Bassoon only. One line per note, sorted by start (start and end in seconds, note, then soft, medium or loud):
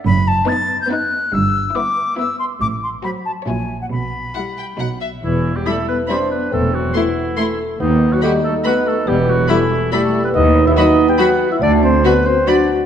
5.66 6.06 E4 medium
6.09 6.53 D4 soft
6.52 6.96 C4 soft
6.95 7.39 B3 medium
7.38 7.79 A3 soft
7.80 8.22 B3 medium
8.22 9.06 D#4 medium
9.07 9.49 B3 medium
9.50 9.92 A3 medium
9.92 10.36 G3 medium
10.35 11.63 B3 medium
11.62 12.19 D4 medium
12.47 12.86 F#4 medium